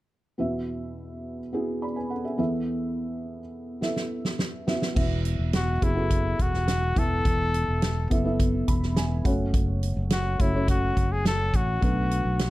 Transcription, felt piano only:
0.38 2.35 E2 medium
0.38 2.35 B2 medium
0.38 1.39 B3 medium
0.38 1.39 E4 medium
0.38 1.40 F#4 medium
0.38 1.40 E5 medium
1.53 2.36 B3 medium
1.53 2.37 E4 medium
1.53 2.39 F#4 medium
1.53 1.83 G#4 medium
1.82 1.96 D5 soft
1.82 1.96 B5 soft
1.96 2.10 B4 soft
1.96 2.10 G#5 soft
2.10 2.24 A4 soft
2.10 2.24 F#5 soft
2.25 2.52 G#4 soft
2.25 2.38 E5 soft
2.38 4.64 E2 medium
2.38 4.64 E3 soft
2.38 3.39 B3 medium
2.38 3.39 E4 medium
2.38 3.40 A4 medium
2.38 3.40 E5 medium
3.81 4.65 B3 medium
3.81 4.66 E4 medium
3.81 4.68 A4 medium
3.81 4.67 E5 medium
4.67 4.93 B3 medium
4.67 4.93 E4 medium
4.67 4.93 F#4 medium
4.67 4.93 E5 medium
4.95 5.78 B2 medium
4.95 5.71 B3 medium
4.95 5.71 E4 medium
4.95 5.72 F#4 medium
4.95 5.72 E5 medium
5.81 5.93 B3 medium
5.81 5.94 E4 medium
5.81 5.95 F#4 medium
5.81 5.95 G#4 medium
5.95 6.94 B3 medium
5.95 6.94 E4 medium
5.95 6.96 F#4 medium
5.95 6.95 A4 medium
6.96 7.78 E3 medium
6.96 7.97 B3 medium
6.96 7.97 E4 medium
6.96 7.97 A4 medium
6.96 7.97 E5 medium
8.10 8.23 B3 medium
8.10 8.23 E4 medium
8.10 8.24 A4 medium
8.10 8.24 E5 medium
8.24 9.25 B3 medium
8.24 9.25 E4 medium
8.24 9.25 A4 medium
8.24 9.26 E5 medium
8.68 8.95 B5 medium
8.97 9.23 G#5 medium
9.24 10.07 C#3 medium
9.24 10.25 A3 medium
9.24 10.25 C#4 medium
9.24 10.26 F#4 medium
9.24 10.26 C#5 medium
9.24 9.52 F#5 medium
10.38 10.52 A3 medium
10.38 10.52 C#4 medium
10.38 10.52 F#4 medium
10.38 10.53 C#5 medium
10.53 11.54 A3 medium
10.53 11.54 C#4 medium
10.53 11.55 F#4 medium
10.53 11.55 C#5 medium
11.81 12.50 B2 medium
11.81 12.50 F#3 medium
11.81 12.50 A3 medium
11.81 12.50 D4 medium
11.81 12.50 F#4 medium
11.81 12.50 B4 medium

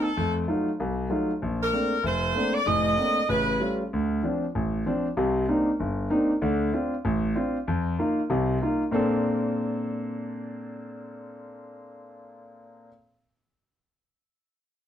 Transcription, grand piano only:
0.17 0.43 F2 medium
0.17 0.43 A3 medium
0.48 0.68 F#3 soft
0.48 0.68 A3 soft
0.48 0.68 D#4 soft
0.48 0.68 F4 medium
0.80 1.06 C2 medium
1.10 1.30 F#3 medium
1.10 1.30 A3 soft
1.10 1.30 D#4 soft
1.10 1.30 F4 medium
1.42 1.68 A#1 medium
1.73 1.93 A3 soft
1.73 1.93 A#3 soft
1.73 1.93 C4 soft
1.73 1.93 D4 medium
2.03 2.30 F1 medium
2.35 2.55 A3 soft
2.35 2.56 A#3 soft
2.35 2.56 C4 soft
2.35 2.56 D4 medium
2.66 2.93 F1 medium
2.66 2.93 A2 medium
2.97 3.18 A3 soft
2.97 3.18 A#3 soft
2.97 3.18 C4 soft
2.97 3.18 D4 soft
3.29 3.56 A1 medium
3.29 3.56 C#3 medium
3.60 3.80 G3 soft
3.60 3.81 A3 soft
3.60 3.81 C#4 soft
3.60 3.81 F4 medium
3.93 4.19 D2 medium
4.23 4.43 F3 medium
4.23 4.44 C4 soft
4.23 4.44 D4 medium
4.55 4.82 A1 medium
4.86 5.06 F3 medium
4.86 5.06 C4 medium
4.86 5.06 D4 medium
5.17 5.44 C2 medium
5.17 5.44 C3 medium
5.48 5.69 A#3 medium
5.48 5.68 C4 soft
5.48 5.69 D4 soft
5.48 5.69 D#4 medium
5.80 6.06 G1 medium
6.10 6.31 A#3 medium
6.10 6.31 C4 soft
6.10 6.31 D4 soft
6.10 6.31 D#4 medium
6.42 6.69 D2 medium
6.42 6.69 D3 medium
6.73 6.93 C4 soft
6.73 6.93 D4 soft
6.73 6.94 F4 medium
7.05 7.31 A1 medium
7.35 7.56 C4 medium
7.35 7.56 D4 soft
7.35 7.56 F4 medium
7.68 7.94 F2 medium
7.99 8.19 A#3 medium
7.99 8.19 D#4 soft
7.99 8.19 F4 medium
8.30 8.57 C2 medium
8.30 8.56 C3 medium
8.62 8.82 A#3 soft
8.62 8.82 D#4 soft
8.62 8.82 F4 medium
8.91 12.87 A#2 medium
8.91 12.88 A#3 medium
8.91 12.88 C4 medium
8.91 12.89 D4 medium
8.91 12.90 A4 medium

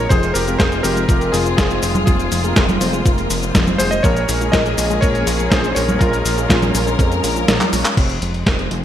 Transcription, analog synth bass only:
0.10 0.33 F1 loud
0.35 0.57 F1 medium
0.59 0.82 F1 loud
0.84 1.06 F1 loud
1.09 1.31 F1 medium
1.33 1.55 F1 loud
1.58 1.80 F1 medium
1.83 2.05 F1 medium
2.07 2.29 F1 loud
2.32 2.54 F1 medium
2.56 2.78 F1 loud
2.81 3.03 F1 loud
3.05 3.28 F1 medium
3.30 3.52 F1 loud
3.55 3.77 F1 medium
3.79 4.01 F1 medium
4.04 4.26 A#1 loud
4.29 4.51 A#1 medium
4.53 4.75 A#1 loud
4.78 5.00 A#1 loud
5.02 5.24 A#1 medium
5.27 5.49 A#1 loud
5.51 5.74 A#1 loud
5.76 5.98 A#1 medium
6.01 6.23 A#1 loud
6.25 6.47 A#1 medium
6.50 6.72 A#1 loud
6.74 6.97 A#1 loud
6.99 7.21 F2 loud
7.24 7.46 A#1 medium
7.48 7.59 A#1 medium
7.73 7.84 A#1 medium
7.97 8.19 F1 loud
8.22 8.44 F1 medium
8.46 8.69 F1 loud
8.71 8.85 F1 loud

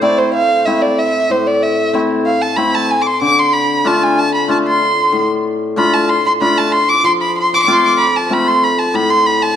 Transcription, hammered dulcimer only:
0.00 1.29 A2 medium
0.00 0.34 A3 medium
0.00 0.34 C4 medium
0.00 0.34 E4 medium
0.66 0.98 A3 medium
0.66 0.98 C4 medium
0.66 0.99 E4 medium
1.30 3.26 A2 medium
1.93 2.25 A3 medium
1.93 2.26 C4 medium
1.93 2.26 E4 medium
2.57 2.89 A3 medium
2.57 2.89 C4 medium
2.57 2.89 E4 medium
3.21 5.17 D3 medium
3.85 4.16 A3 medium
3.85 4.17 D4 medium
3.85 4.17 F4 medium
4.48 4.80 A3 medium
4.48 4.80 D4 medium
4.48 4.81 F4 medium
5.12 7.08 A2 medium
5.76 6.08 A3 medium
5.76 6.08 D4 medium
5.76 6.09 F4 medium
6.41 6.72 A3 medium
6.41 6.72 D4 medium
6.41 6.72 F4 medium
7.04 8.99 F3 medium
7.67 7.99 A3 medium
7.67 7.99 C4 medium
7.67 7.99 F4 medium
8.30 8.62 A3 medium
8.30 8.62 C4 medium
8.30 8.62 F4 medium
8.94 9.56 A2 medium

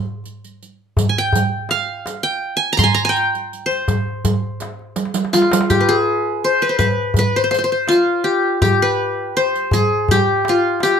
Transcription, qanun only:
0.00 0.63 C5 medium
1.09 1.24 G#5 medium
1.18 2.01 G5 medium
1.71 2.59 F5 medium
2.23 2.63 G5 medium
2.57 2.83 G#5 medium
2.73 2.77 A#5 loud
2.77 2.94 A#5 medium
2.77 3.48 C6 medium
2.84 3.04 G#5 medium
2.94 3.69 A#5 medium
3.05 3.15 G#5 medium
3.09 3.92 G5 medium
3.66 5.01 C5 medium
5.33 6.68 F4 medium
5.70 5.95 G4 medium
5.81 6.50 B4 medium
5.89 7.09 G#4 medium
6.44 6.68 C5 medium
6.62 6.75 B4 medium
6.69 6.85 C5 medium
6.79 7.18 B4 medium
7.19 7.42 B4 medium
7.36 7.43 C5 medium
7.44 7.51 C5 medium
7.51 7.58 C5 medium
7.59 7.64 C5 medium
7.64 7.72 C5 medium
7.72 8.78 C5 medium
7.88 9.23 F4 medium
8.24 8.61 G4 medium
8.62 9.79 G4 medium
8.82 9.43 B4 medium
9.37 10.42 C5 medium
9.73 10.17 G#4 medium
10.11 10.83 G4 medium
10.49 11.00 F4 medium
10.83 11.00 G4 loud

